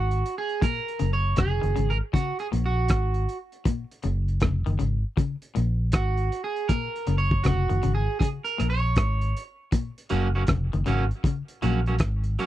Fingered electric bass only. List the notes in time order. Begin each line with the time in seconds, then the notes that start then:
Already playing: G#1
1.02 F#1
1.39 F1
1.64 F#1
1.77 G#1
2.53 A#1
2.91 G#1
4.05 F#1
4.43 F1
4.67 F#1
4.81 G#1
5.57 A#1
5.94 G#1
7.08 F#1
7.46 F1
7.71 F#1
7.85 G#1
8.61 A#1
8.98 G#1
10.12 F#1
10.49 F1
10.74 F#1
10.88 G#1
11.64 A#1
12.01 G#1